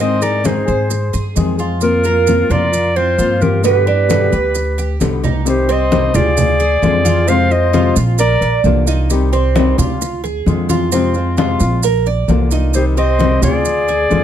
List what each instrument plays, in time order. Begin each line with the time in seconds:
Already playing: upright bass G#2, nylon-string guitar D#3
0.00 nylon-string guitar G#3 C4 G#4, cuban tres C4, flute C5, clarinet D#5, high conga
0.21 nylon-string guitar G#3 C4 G#4, cuban tres D#4, flute A#4, clarinet D5, high conga, maracas
0.44 nylon-string guitar D#3 G#3 C4 G#4, flute G#4, clarinet C5, high conga, maracas
0.66 upright bass G#2, nylon-string guitar G#3 C4 G#4, cuban tres C5, high conga, maracas
0.90 muted nylon-string guitar stroke, high conga, maracas
1.13 upright bass G2, cuban tres G#4, high conga, maracas
1.35 upright bass F2, nylon-string guitar D#3 G#3 C4 G#4, high conga, maracas
1.58 nylon-string guitar G#3 C4 G#4, cuban tres F4, high conga, maracas
1.81 nylon-string guitar F3 A#3 C4 F4, flute F4, clarinet A#4, high conga, maracas
2.04 nylon-string guitar A#3 C4 F4, cuban tres A#4, high conga, maracas
2.27 nylon-string guitar F3 A#3 C4 F4, high conga, maracas
2.49 upright bass F2, nylon-string guitar A#3 C4 F4, cuban tres F4, flute A#4, clarinet D5, low conga, maracas
2.72 muted nylon-string guitar stroke, high conga, maracas
2.96 cuban tres C4, flute F4, clarinet C5, high conga
3.18 upright bass G2, nylon-string guitar F3 A#3 C4 F4, cuban tres F4, high conga, maracas
3.40 nylon-string guitar A#3 C4 F4, flute G4, clarinet A#4, high conga, maracas
3.63 nylon-string guitar B2 D3 G3 B3 G4, cuban tres B3, flute G4, clarinet B4, high conga, maracas
3.87 nylon-string guitar G3 B3 G4, cuban tres D4, high conga
4.08 nylon-string guitar B2 D3 G3 B3 G4, high conga, maracas
4.32 upright bass D2, nylon-string guitar G3 B3 G4, cuban tres B4, high conga, maracas
4.55 muted nylon-string guitar stroke, high conga, maracas
4.78 cuban tres G4, high conga, maracas
5.00 upright bass C2, nylon-string guitar B2 D3 G3 B3 G4, high conga, maracas
5.23 nylon-string guitar G3 B3 G4, cuban tres D#4, low conga, maracas
5.45 nylon-string guitar C3 D#3 G3 C4 G4, flute G4, clarinet C5, high conga, maracas
5.68 nylon-string guitar G3 C4 G4, cuban tres C4, flute C5, clarinet D#5, high conga, maracas
5.91 nylon-string guitar C3 D#3 G3 C4 G4, high conga, maracas
6.14 upright bass D2, nylon-string guitar G3 C4 G4, cuban tres F4, flute G#4, clarinet D5, high conga, low conga, maracas
6.37 muted nylon-string guitar stroke, high conga, low conga, maracas
6.60 cuban tres G#4, high conga, maracas
6.82 upright bass F2, nylon-string guitar D3 G#3 C4 F4, high conga, maracas
7.04 nylon-string guitar G#3 C4 F4, cuban tres F4, high conga, maracas
7.27 nylon-string guitar C3 F3 G#3 C4 F4, cuban tres C4, flute C5, clarinet F5, high conga, maracas
7.49 nylon-string guitar G#3 C4 F4, flute C5, clarinet D#5, high conga, maracas
7.73 nylon-string guitar C3 F3 G#3 C4 F4, cuban tres F4, high conga, maracas
7.96 upright bass A#1, nylon-string guitar G#3 C4 F4, high conga, maracas
8.18 flute A#4, cuban tres A#4, clarinet D5, muted nylon-string guitar stroke, high conga, maracas
8.41 upright bass A#1, cuban tres D5, high conga, maracas
8.64 upright bass C2, nylon-string guitar D3 A#3 D4 F4, high conga, maracas
8.87 nylon-string guitar A#3 D4 F4, cuban tres D#4, high conga, maracas
9.09 nylon-string guitar C3 D#3 G3 C4 G4, high conga, maracas
9.32 nylon-string guitar G3 C4 G4, cuban tres C4, high conga, maracas
9.56 nylon-string guitar C3 D#3 G3 C4 G4, high conga, maracas
9.77 upright bass D2, nylon-string guitar G3 C4 G4, cuban tres F4, high conga, low conga, maracas
10.01 muted nylon-string guitar stroke, high conga, maracas
10.24 cuban tres G#4, high conga, maracas
10.46 upright bass F2, nylon-string guitar D3 G#3 C4 F4, high conga, maracas
10.69 nylon-string guitar G#3 C4 F4, cuban tres F4, high conga, maracas
10.92 nylon-string guitar C3 F3 G#3 C4 F4, cuban tres C4, high conga, maracas
11.14 nylon-string guitar G#3 C4 F4, high conga, maracas
11.37 nylon-string guitar C3 F3 G#3 C4 F4, cuban tres F4, high conga, maracas
11.60 upright bass A#1, nylon-string guitar G#3 C4 F4, high conga, maracas
11.83 cuban tres A#4, muted nylon-string guitar stroke, high conga, maracas
12.06 cuban tres D5, high conga, maracas
12.28 upright bass C2, nylon-string guitar D3 A#3 D4 F4, high conga, maracas
12.51 nylon-string guitar A#3 D4 F4, cuban tres D#4, high conga, maracas
12.74 nylon-string guitar C3 D#3 G3 C4 G4, flute G4, clarinet C5, high conga, maracas
12.97 nylon-string guitar G3 C4 G4, cuban tres C4, flute C5, clarinet D#5, high conga, maracas
13.18 nylon-string guitar C3 D#3 G3 C4 G4, high conga, maracas
13.41 upright bass D2, nylon-string guitar G3 C4 G4, cuban tres F4, flute G#4, clarinet D5, high conga, low conga, maracas
13.65 muted nylon-string guitar stroke, high conga, maracas
13.88 cuban tres G#4, high conga, maracas
14.10 upright bass F2, nylon-string guitar D3 G#3 C4 F4, high conga, maracas